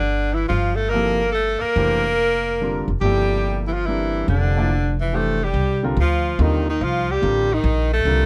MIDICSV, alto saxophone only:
0, 0, Header, 1, 2, 480
1, 0, Start_track
1, 0, Tempo, 418994
1, 591, Time_signature, 3, 2, 24, 8
1, 9459, End_track
2, 0, Start_track
2, 0, Title_t, "Alto saxophone"
2, 0, Program_c, 0, 65
2, 0, Note_on_c, 0, 62, 91
2, 393, Note_on_c, 0, 64, 79
2, 410, Note_off_c, 0, 62, 0
2, 550, Note_off_c, 0, 64, 0
2, 557, Note_on_c, 0, 65, 82
2, 866, Note_on_c, 0, 69, 84
2, 883, Note_off_c, 0, 65, 0
2, 1021, Note_on_c, 0, 70, 87
2, 1038, Note_off_c, 0, 69, 0
2, 1506, Note_off_c, 0, 70, 0
2, 1513, Note_on_c, 0, 69, 89
2, 1843, Note_on_c, 0, 70, 100
2, 1860, Note_off_c, 0, 69, 0
2, 3298, Note_off_c, 0, 70, 0
2, 3447, Note_on_c, 0, 67, 84
2, 4134, Note_off_c, 0, 67, 0
2, 4205, Note_on_c, 0, 64, 63
2, 4277, Note_on_c, 0, 65, 82
2, 4294, Note_off_c, 0, 64, 0
2, 4432, Note_on_c, 0, 64, 85
2, 4449, Note_off_c, 0, 65, 0
2, 4912, Note_off_c, 0, 64, 0
2, 4919, Note_on_c, 0, 62, 72
2, 5669, Note_off_c, 0, 62, 0
2, 5749, Note_on_c, 0, 64, 71
2, 5909, Note_on_c, 0, 69, 81
2, 5926, Note_off_c, 0, 64, 0
2, 6228, Note_on_c, 0, 67, 80
2, 6245, Note_off_c, 0, 69, 0
2, 6691, Note_off_c, 0, 67, 0
2, 6886, Note_on_c, 0, 65, 77
2, 7369, Note_on_c, 0, 63, 80
2, 7386, Note_off_c, 0, 65, 0
2, 7659, Note_off_c, 0, 63, 0
2, 7675, Note_on_c, 0, 63, 77
2, 7840, Note_on_c, 0, 65, 80
2, 7858, Note_off_c, 0, 63, 0
2, 8146, Note_on_c, 0, 67, 88
2, 8163, Note_off_c, 0, 65, 0
2, 8638, Note_on_c, 0, 63, 88
2, 8655, Note_off_c, 0, 67, 0
2, 9084, Note_off_c, 0, 63, 0
2, 9091, Note_on_c, 0, 69, 97
2, 9459, Note_off_c, 0, 69, 0
2, 9459, End_track
0, 0, End_of_file